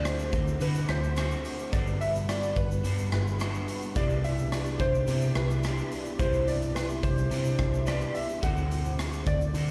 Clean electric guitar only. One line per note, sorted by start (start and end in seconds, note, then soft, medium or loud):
0.00 0.37 D3 medium
0.00 0.33 A3 medium
0.00 0.33 C4 medium
0.00 0.31 F#4 medium
0.32 0.60 A3 soft
0.32 0.61 C4 soft
0.32 0.60 F#4 soft
0.60 1.16 D3 medium
0.60 1.16 A3 medium
0.60 1.17 C4 medium
0.60 1.19 F#4 medium
1.16 1.70 D3 medium
1.16 1.73 A3 medium
1.16 1.74 C4 medium
1.16 1.76 F#4 medium
1.71 2.83 G3 medium
1.71 2.85 B3 medium
1.71 2.85 D4 medium
1.76 2.86 F#4 medium
2.83 3.39 G3 medium
2.83 3.40 B3 medium
2.83 3.41 D4 medium
2.83 3.42 F#4 medium
3.39 3.96 G3 medium
3.39 3.97 B3 medium
3.39 3.97 D4 medium
3.39 3.97 F#4 medium
3.95 4.80 C3 medium
3.95 4.80 E3 medium
3.95 4.80 B3 medium
3.95 4.81 D4 medium
3.95 4.78 G4 medium
4.79 5.07 B3 soft
4.79 5.08 D4 soft
4.79 5.08 G4 medium
5.07 5.62 E3 medium
5.07 5.63 B3 medium
5.07 5.65 D4 medium
5.07 5.65 G4 medium
5.63 6.18 E3 medium
5.63 6.20 B3 medium
5.63 6.21 D4 medium
5.63 6.21 G4 medium
6.18 7.30 C3 medium
6.18 7.29 E3 medium
6.18 7.32 B3 medium
6.22 7.32 D4 medium
6.22 7.32 G4 medium
7.30 7.85 E3 medium
7.30 7.88 D4 medium
7.30 7.88 G4 medium
7.86 8.40 E3 medium
7.86 8.43 B3 medium
7.86 8.44 D4 medium
7.86 8.44 G4 medium
8.41 9.54 D3 medium
8.41 9.54 A3 medium
8.41 9.55 C4 medium
8.46 9.57 F#4 medium
9.54 9.71 D3 medium
9.54 9.71 A3 medium
9.54 9.71 C4 medium
9.54 9.71 F#4 medium